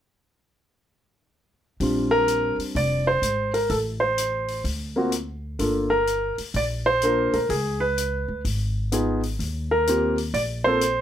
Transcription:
1.80 upright bass A#1, grand piano G3 C4 D4 F4, kick, open hi-hat
2.11 grand piano A#4
2.28 closed hi-hat
2.58 muted upright bass stroke, open hi-hat
2.75 upright bass F1, grand piano D5, kick, open hi-hat
3.07 grand piano C5
3.22 upright bass G#1, closed hi-hat
3.54 grand piano A#4, open hi-hat
3.70 upright bass A1, grand piano A4, kick, open hi-hat
4.00 grand piano C5
4.18 closed hi-hat
4.48 open hi-hat
4.64 upright bass D2, kick, open hi-hat
4.96 grand piano A#3 C4 F4 F#4
5.12 closed hi-hat
5.59 upright bass G1, grand piano A#3 D4 F4 A4, kick, open hi-hat
5.90 grand piano A#4
6.07 closed hi-hat
6.38 muted upright bass stroke, open hi-hat
6.54 upright bass A#1, grand piano D5, kick, open hi-hat
6.86 grand piano C5
7.02 grand piano A#3 D4 F4 A#4, closed hi-hat
7.33 upright bass A#1, grand piano A#4, open hi-hat
7.49 upright bass C#2, grand piano G#4, kick, open hi-hat
7.80 grand piano B4
7.98 closed hi-hat
8.28 upright bass D2
8.45 upright bass G#1, kick, open hi-hat
8.92 grand piano B3 D#4 F4 G#4, closed hi-hat
9.23 open hi-hat
9.39 upright bass D#2, kick, open hi-hat
9.71 grand piano A#4
9.87 grand piano A#3 C4 F4 G4, closed hi-hat
10.18 open hi-hat
10.34 upright bass A#1, grand piano D5, kick, open hi-hat
10.64 grand piano A#3 C4 F4 A4 C5
10.81 closed hi-hat

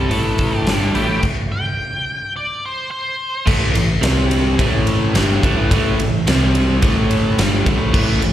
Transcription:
Already playing: lead electric guitar E4 A4
0.09 fretless electric bass A1, overdriven electric guitar A2 E3 A3, open hi-hat
0.38 kick, open hi-hat
0.56 lead electric guitar D4 G4
0.66 fretless electric bass G1, overdriven electric guitar G2 D3 G3, snare, open hi-hat
0.94 fretless electric bass A1, overdriven electric guitar A2 E3 A3, lead electric guitar E4 G4, open hi-hat
1.23 kick, crash
1.52 lead electric guitar G5
2.36 lead electric guitar D5
2.66 lead electric guitar C5
2.91 lead electric guitar C5
3.47 fretless electric bass A1, overdriven electric guitar A2 E3 A3, kick, crash
3.74 fretless electric bass A1, overdriven electric guitar A2 E3, ride
4.01 fretless electric bass C2, overdriven electric guitar C3 G3 C4, snare, ride
4.31 ride
4.58 fretless electric bass A1, overdriven electric guitar A2 E3 A3, kick, ride
4.87 ride
5.14 fretless electric bass G1, overdriven electric guitar G2 D3 G3, snare, ride
5.42 fretless electric bass A1, overdriven electric guitar A2 E3 A3, kick, ride
5.71 fretless electric bass A1, overdriven electric guitar A2 E3 A3, kick, ride
5.98 fretless electric bass A1, overdriven electric guitar A2 E3, ride
6.27 fretless electric bass C2, overdriven electric guitar C3 G3 C4, snare, ride
6.55 ride
6.82 fretless electric bass A1, overdriven electric guitar A2 E3 A3, kick, ride
7.11 ride
7.38 fretless electric bass G1, overdriven electric guitar G2 D3 G3, snare, ride
7.66 fretless electric bass A1, overdriven electric guitar A2 E3 A3, kick, ride
7.92 fretless electric bass A1, overdriven electric guitar A2 E3 A3, kick, crash
8.21 fretless electric bass A1, overdriven electric guitar A2 E3, ride

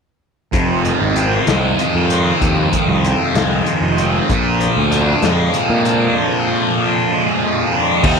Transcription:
0.53 picked electric bass F1, distorted electric guitar F2, tanpura C3, kick, closed hi-hat
0.85 distorted electric guitar D#3, closed hi-hat
1.02 picked electric bass G#1
1.15 tanpura F3, distorted electric guitar C4, closed hi-hat
1.47 picked electric bass C2, distorted electric guitar G#3, snare, closed hi-hat
1.79 distorted electric guitar D#3, tanpura F3, closed hi-hat
1.95 picked electric bass F2
2.10 distorted electric guitar C4, closed hi-hat
2.40 picked electric bass D#2, tanpura F2, distorted electric guitar F2, kick, closed hi-hat
2.73 distorted electric guitar D#3, kick, closed hi-hat
2.88 picked electric bass C2
3.02 tanpura C3, distorted electric guitar C4, closed hi-hat
3.34 picked electric bass C2, distorted electric guitar G#3, snare, closed hi-hat
3.65 distorted electric guitar D#3, tanpura F3, closed hi-hat
3.82 picked electric bass F1
3.98 distorted electric guitar C4, closed hi-hat
4.27 picked electric bass A#1, distorted electric guitar A#2, tanpura F3, kick, closed hi-hat
4.59 distorted electric guitar F3, closed hi-hat
4.76 picked electric bass D2
4.89 tanpura F2, distorted electric guitar D4, closed hi-hat
5.22 picked electric bass F2, distorted electric guitar G#3, snare, closed hi-hat
5.50 tanpura C3, distorted electric guitar F3, closed hi-hat
5.69 picked electric bass A#2
5.85 distorted electric guitar D4, closed hi-hat
6.12 tanpura F3
6.17 distorted electric guitar A#2
6.48 distorted electric guitar F3
6.75 tanpura F3
6.79 distorted electric guitar D4
7.10 distorted electric guitar G#3
7.36 tanpura F2
7.41 distorted electric guitar F3
7.73 distorted electric guitar D4
8.02 picked electric bass D#2, tanpura C3, distorted electric guitar D#3 A#3 D#4, kick, crash

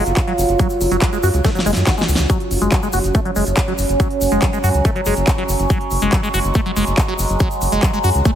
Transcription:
Already playing: synth drone F#3 F4
0.06 analog synth bass F#1, closed hi-hat, shaker
0.17 kick, clap, closed hi-hat, shaker
0.27 acid bass F#3, closed hi-hat
0.38 analog synth bass F#1, open hi-hat, shaker
0.48 analog synth bass F#1, closed hi-hat, shaker
0.59 acid bass F#3, kick, closed hi-hat, shaker
0.70 closed hi-hat, shaker
0.81 analog synth bass F#1, open hi-hat, shaker
0.91 analog synth bass F#1, acid bass F#3, closed hi-hat, shaker
1.02 acid bass F#3, kick, clap, closed hi-hat, shaker
1.13 acid bass G#3, closed hi-hat, shaker
1.23 analog synth bass F#2, acid bass F#4, open hi-hat, shaker
1.34 analog synth bass C#2, closed hi-hat, shaker
1.44 acid bass A3, kick, snare, closed hi-hat, shaker
1.55 acid bass F#3, snare, closed hi-hat, shaker
1.66 analog synth bass F#1, acid bass G#3, open hi-hat, shaker
1.73 analog synth bass F#2, snare, closed hi-hat, shaker
1.87 acid bass F#4, kick, snare, clap, closed hi-hat, shaker
1.98 acid bass G#3, snare, closed hi-hat, shaker
2.08 analog synth bass C#2, open hi-hat, shaker
2.15 analog synth bass C#2, snare, closed hi-hat, shaker
2.30 acid bass F#3, synth drone F#3 C#4, kick, closed hi-hat, shaker
2.40 closed hi-hat
2.51 analog synth bass F#1, open hi-hat, shaker
2.62 analog synth bass F#1, acid bass G#3, closed hi-hat, shaker
2.72 acid bass F#3, kick, clap, closed hi-hat, shaker
2.83 acid bass G#3, closed hi-hat, shaker
2.93 analog synth bass F#1, acid bass F#4, open hi-hat, shaker
3.04 analog synth bass F#1, closed hi-hat, shaker
3.15 acid bass A3, kick, closed hi-hat, shaker
3.25 acid bass F#3, closed hi-hat
3.36 analog synth bass F#1, acid bass G#3, open hi-hat, shaker
3.47 analog synth bass F#1, closed hi-hat, shaker
3.57 kick, clap, closed hi-hat, shaker
3.68 acid bass F#3, closed hi-hat
3.78 analog synth bass F#1, open hi-hat, shaker
3.89 analog synth bass F#1, closed hi-hat, shaker
4.00 acid bass F#3, kick, closed hi-hat, shaker
4.10 closed hi-hat
4.21 analog synth bass F#1, open hi-hat, shaker
4.32 analog synth bass F#1, acid bass G#3, closed hi-hat, shaker
4.42 acid bass F#3, kick, clap, closed hi-hat, shaker
4.53 acid bass G#3, closed hi-hat, shaker
4.64 analog synth bass F#2, acid bass F#4, open hi-hat, shaker
4.74 analog synth bass C#2, closed hi-hat, shaker
4.85 acid bass A3, kick, closed hi-hat, shaker
4.96 acid bass F#3, closed hi-hat
5.06 analog synth bass F#1, acid bass G#3, open hi-hat, shaker
5.17 analog synth bass F#1, closed hi-hat, shaker
5.28 kick, clap, closed hi-hat, shaker
5.38 acid bass F#3, closed hi-hat
5.49 analog synth bass F#1, open hi-hat, shaker
5.59 analog synth bass F#1, closed hi-hat, shaker
5.70 acid bass F#3, synth drone G#3, kick, closed hi-hat, shaker
5.81 closed hi-hat
5.91 analog synth bass F#1, open hi-hat, shaker
6.01 analog synth bass F#1, acid bass G#3, closed hi-hat, shaker
6.13 acid bass F#3, kick, clap, closed hi-hat, shaker
6.23 acid bass G#3, closed hi-hat, shaker
6.34 analog synth bass F#1, acid bass F#4, open hi-hat, shaker
6.44 analog synth bass F#1, closed hi-hat, shaker
6.54 acid bass A3, kick, closed hi-hat, shaker
6.66 acid bass F#3, closed hi-hat
6.76 analog synth bass F#1, acid bass G#3, open hi-hat, shaker
6.87 analog synth bass F#1, closed hi-hat, shaker
6.98 kick, clap, closed hi-hat, shaker
7.08 acid bass F#3, closed hi-hat
7.19 analog synth bass F#1, open hi-hat, shaker
7.29 analog synth bass F#1, closed hi-hat, shaker
7.39 acid bass F#3, kick, closed hi-hat, shaker
7.51 closed hi-hat, shaker
7.62 analog synth bass F#1, open hi-hat, shaker
7.72 analog synth bass F#1, acid bass G#3, closed hi-hat, shaker
7.83 acid bass F#3, kick, clap, closed hi-hat, shaker
7.93 acid bass G#3, closed hi-hat, shaker
8.04 analog synth bass F#2, acid bass F#4, open hi-hat, shaker
8.15 analog synth bass C#2, closed hi-hat, shaker
8.25 acid bass A3, kick, closed hi-hat, shaker

